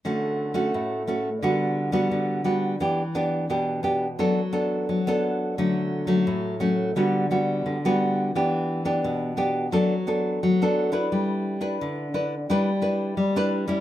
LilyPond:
\new Staff \with { instrumentName = "Nylon-string guitar" } { \time 4/4 \key d \major \tempo 4 = 87 << { <a cis' fis'>8. <a cis' fis'>8. <a cis' fis'>16 r16 <g b fis'>8. <g b fis'>8. <g b fis'>8 | <b d' g'>16 r16 <b d' g'>8 <b d' g'>8 <b d' g'>16 r16 <b d' a'>16 r16 <b d' a'>8. <b d' a'>8. | <fis a cis'>8. <fis a cis'>8. <fis a cis'>8 <g b fis'>8 <g b fis'>8. <g b fis'>8. | <b d' g'>8. <b d' g'>8. <b d' g'>8 <b d' a'>16 r16 <b d' a'>8 r16 <b d' a'>8 <d' e' b'>16~ |
<d' e' b'>8. <d' e' b'>8. <d' e' b'>16 r16 <d' e' b'>16 r16 <d' e' b'>8 r16 <d' e' b'>8 <g cis' e'>16 | } \\ { d4 a,4 d4 d4 | e4 b,4 fis4 fis4 | d4 a,4 d4 d4 | e4 b,4 fis4 fis4 |
g4 d4 g4 g4 | } >> }